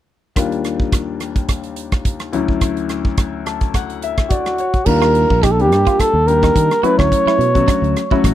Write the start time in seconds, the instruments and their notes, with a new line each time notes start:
0.36 grand piano D#2 G3 A#3 D4 F4, kick, cross-stick, closed hi-hat
0.52 closed hi-hat
0.64 cross-stick, closed hi-hat
0.80 kick
0.92 kick, cross-stick, closed hi-hat
1.20 cross-stick, closed hi-hat
1.36 kick, closed hi-hat
1.49 kick, cross-stick, closed hi-hat
1.63 closed hi-hat
1.76 closed hi-hat
1.92 kick, cross-stick, closed hi-hat
2.05 kick, closed hi-hat
2.20 cross-stick, closed hi-hat
2.33 grand piano D2 F#3 A3 C#4 E4, closed hi-hat
2.48 kick
2.61 kick, cross-stick, closed hi-hat
2.77 closed hi-hat
2.89 cross-stick, closed hi-hat
3.05 kick
3.17 kick, cross-stick, closed hi-hat
3.46 grand piano A5, cross-stick, closed hi-hat
3.61 kick, closed hi-hat
3.74 grand piano F#5, kick, cross-stick, closed hi-hat
3.90 closed hi-hat
4.02 grand piano E5, closed hi-hat
4.18 kick, cross-stick, closed hi-hat
4.29 muted trumpet F#4, grand piano D5, kick, closed hi-hat
4.46 cross-stick, closed hi-hat
4.58 grand piano C#5, closed hi-hat
4.74 kick, closed hi-hat
4.86 fretless electric bass D#2, grand piano G3 A#3 D4 F4, muted trumpet A#4, kick, crash
5.02 clean electric guitar F4, cross-stick
5.15 closed hi-hat
5.30 fretless electric bass A#1, kick
5.43 clean electric guitar D#4, muted trumpet G4, kick, cross-stick, closed hi-hat
5.51 muted trumpet A4
5.59 grand piano G3 A#3 D4 G4, muted trumpet G4, closed hi-hat
5.71 fretless electric bass G2, cross-stick, closed hi-hat
5.87 clean electric guitar F4, kick, closed hi-hat
5.99 muted trumpet A4, muted fretless electric bass stroke, kick, cross-stick, closed hi-hat
6.13 fretless electric bass D#2
6.27 grand piano G3 A#3 D4 G4, muted trumpet A#4, closed hi-hat
6.43 clean electric guitar D#4, kick, cross-stick, closed hi-hat
6.55 fretless electric bass D#3, kick, closed hi-hat
6.71 cross-stick, closed hi-hat
6.83 grand piano F#3 A3 C#4 E4, clean electric guitar F#4, muted trumpet B4, muted fretless electric bass stroke, closed hi-hat
6.98 fretless electric bass D2, muted trumpet C#5, kick, cross-stick
7.12 kick, closed hi-hat
7.26 clean electric guitar E4, muted fretless electric bass stroke, cross-stick
7.38 fretless electric bass B2, closed hi-hat
7.55 grand piano F#3 A3 C#4 F#4, kick, closed hi-hat
7.68 clean electric guitar D4, kick, cross-stick, closed hi-hat
7.82 fretless electric bass D2, closed hi-hat
7.96 cross-stick, closed hi-hat
8.11 grand piano F#3 A3 C#4 F#4, clean electric guitar E4, muted fretless electric bass stroke, kick
8.24 fretless electric bass A1, kick, cross-stick, closed hi-hat